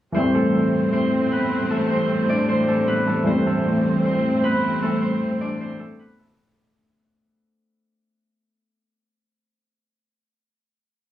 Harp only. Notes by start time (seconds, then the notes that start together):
0.15 C4 C5
0.35 A3 A4
0.93 C4 C5
1.32 B3 B4
1.70 A3 A4
1.90 C4 C5
2.29 D4 D5
2.49 C4 C5
2.68 A3 A4
2.88 B3 B4
3.07 A3 A4
3.27 C4 C5
3.46 A3 A4
4.05 C4 C5
4.44 B3 B4
4.82 A3 A4
5.02 C4 C5
5.41 D4 D5
5.60 C4 C5
5.79 A3 A4
5.99 B3 B4
6.19 A3 A4